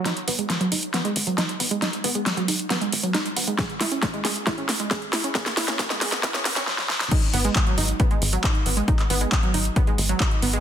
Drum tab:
CC |----------------|----------------|----------------|----------------|
HH |xxoxxxoxxxoxxxox|xxoxxxoxxxoxxxox|xxoxxxoxxxoxxxox|xxoxxxoxxxox----|
CP |----------------|----------------|----------------|----------------|
SD |o---o---o---o---|o---o---o---o---|o-o-o-o-o-o-o-o-|oooooooooooooooo|
BD |----------------|----------------|o---o---o---o---|o---o---o-------|

CC |x---------------|----------------|
HH |xxoxxxoxxxoxxxox|xxoxxxoxxxoxxxox|
CP |----x-------x---|-x--x-------x---|
SD |----------------|----------------|
BD |o---o---o---o---|o---o---o---o---|